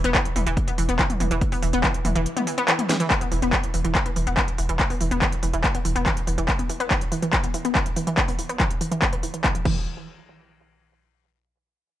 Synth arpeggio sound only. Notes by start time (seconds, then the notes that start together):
0.04 B3
0.15 E3
0.36 E3
0.47 E3
0.68 B3
0.78 E3
0.89 B3
0.99 E3
1.20 E3
1.31 E3
1.52 B3
1.63 E3
1.73 B3
1.84 E3
2.05 E3
2.16 E3
2.37 B3
2.47 E3
2.58 B3
2.68 E3
2.89 E3
3.00 E3
3.21 B3
3.32 E3
3.42 B3
3.53 E3
3.74 E3
3.85 E3
4.06 B3
4.16 E3
4.27 B3
4.37 E3
4.58 E3
4.69 E3
4.90 B3
5.01 E3
5.11 B3
5.22 E3
5.43 E3
5.53 E3
5.75 B3
5.85 E3
5.96 B3
6.06 E3
6.27 E3
6.38 E3
6.59 B3
6.69 E3
6.80 B3
6.91 E3
7.12 E3
7.22 E3
7.44 B3
7.54 E3
7.65 B3
7.75 E3
7.96 E3
8.07 E3
8.28 B3
8.39 E3
8.49 B3
8.60 E3
8.81 E3
8.91 E3
9.13 B3
9.23 E3
9.34 E3
9.44 E3
9.55 F3
9.65 E3